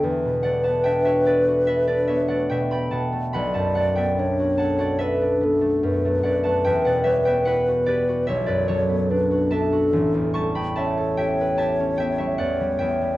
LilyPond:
<<
  \new Staff \with { instrumentName = "Alto flute" } { \time 4/4 \key b \minor \tempo 4 = 73 b'2.~ b'8 r8 | d''4 cis''4 b'8 a'8 b'4~ | b'2 cis''4 b'8 a'8~ | a'8 r8 cis''2 cis''4 | }
  \new Staff \with { instrumentName = "Harp" } { \time 4/4 \key b \minor <b' d'' e'' fis'' g'' a''>8 <d'' fis''>16 <fis'' a''>16 <e'' g''>16 <cis'' e''>16 <b' d''>8 <b' e''>16 <b' d''>16 <cis'' e''>16 <d'' fis''>16 <e'' g''>16 <g'' b''>16 <fis'' a''>8 | <fis'' b''>16 <fis'' a''>16 <d'' fis''>16 <e'' g''>8. <fis'' a''>16 <d'' fis''>16 <b' e''>4. <d'' fis''>16 <fis'' a''>16 | <e'' g''>16 <d'' fis''>16 <cis'' e''>16 <e'' g''>16 <b' fis''>8 <b' d''>8 <cis'' e''>16 <b' d''>16 <a' cis''>4 <e'' a''>8~ | <e'' a''>8 <a'' cis'''>16 <g'' b''>16 <e'' a''>8 <e'' g''>8 <e'' a''>8 <e'' g''>16 <cis'' e''>16 <d'' fis''>8 <e'' g''>8 | }
  \new Staff \with { instrumentName = "Harp" } { \time 4/4 \key b \minor <e, a b d' g' a'>16 b,16 a16 b16 d'16 fis'16 a'16 fis'16 a'16 d'16 b16 a16 b,16 a16 b,16 a16 | b,,16 fis,16 a16 b16 d'16 fis'16 a'16 fis'16 a'16 d'16 b16 a16 fis,16 a16 fis,16 a16 | e,16 b,16 g16 b16 e'16 fis'16 g'16 fis'16 b,,16 fis,16 fis16 b16 d'16 fis'16 d'16 fis'16 | a,,16 e,16 g16 b16 cis'16 a'16 g'16 b'16 g'16 cis'16 b16 g16 e,16 g16 e,16 g16 | }
>>